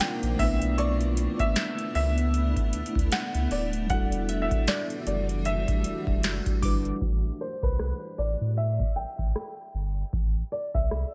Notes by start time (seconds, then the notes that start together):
Already playing: D#3 A#3 C4 D4 D#4 F4 A#4 D5 D6
0.00 G5, snare, closed hi-hat
0.23 A#1, closed hi-hat
0.36 B1 A3 B3 D4 E4 E5, kick, open hi-hat
0.42 E4 B4
0.62 closed hi-hat
0.78 D5 C#6, closed hi-hat
1.01 closed hi-hat
1.17 closed hi-hat
1.39 E5, kick, closed hi-hat
1.56 snare, closed hi-hat
1.78 closed hi-hat
1.95 C#2 E5, open hi-hat
2.18 closed hi-hat
2.34 closed hi-hat
2.57 kick, closed hi-hat
2.73 D2, closed hi-hat
2.86 closed hi-hat
2.95 D2, kick, closed hi-hat
3.12 F#5, snare, closed hi-hat
3.34 C#2, closed hi-hat
3.51 D1 D5, open hi-hat
3.73 closed hi-hat
3.86 E1 E3 G3 D4 E4 F#4 F#5, kick, closed hi-hat
3.92 F#4 A4
4.12 closed hi-hat
4.29 E5, closed hi-hat
4.42 E5
4.51 kick, closed hi-hat
4.67 D5, snare, closed hi-hat
4.90 closed hi-hat
5.06 F#1 D5, closed hi-hat
5.29 closed hi-hat
5.45 E5, closed hi-hat
5.68 kick, closed hi-hat
5.84 E1, closed hi-hat
6.07 E1, kick
6.23 F#1, snare, closed hi-hat
6.46 kick, closed hi-hat
6.61 G1 G3 D4 E4 F#4 B4 D6, kick, open hi-hat
6.85 closed hi-hat
6.96 closed hi-hat
7.01 A1, kick
7.09 closed hi-hat
7.24 closed hi-hat
7.40 C5, closed hi-hat
7.63 C2 B4, kick, closed hi-hat
7.79 F#6, cross-stick, closed hi-hat
8.02 closed hi-hat
8.18 A1 D5, closed hi-hat
8.41 A2, closed hi-hat
8.57 E5, closed hi-hat
8.80 kick, closed hi-hat
8.96 A1 G5, closed hi-hat
9.09 closed hi-hat
9.19 A1, kick, closed hi-hat
9.35 cross-stick, closed hi-hat
9.58 closed hi-hat
9.74 G1
9.96 closed hi-hat
10.13 A1, kick, closed hi-hat
10.36 closed hi-hat
10.52 D5, closed hi-hat
10.74 C2 E5, kick, closed hi-hat
10.91 cross-stick, closed hi-hat